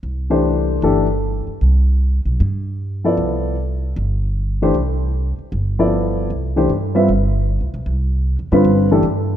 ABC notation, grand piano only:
X:1
M:4/4
L:1/8
Q:"Swing" 1/4=153
K:C
V:1 name="Grand piano"
z [E,A,DGc]3 [E,A,DGA] z3 | z6 z [F,B,EAd]- | [F,B,EAd]2 z4 z [E,A,DGc] | z4 z [F,B,EAd]3 |
z [E,A,DGc] z [G,CFBe] z4 | z3 [D,G,CFB]2 [E,A,DGA] z2 |]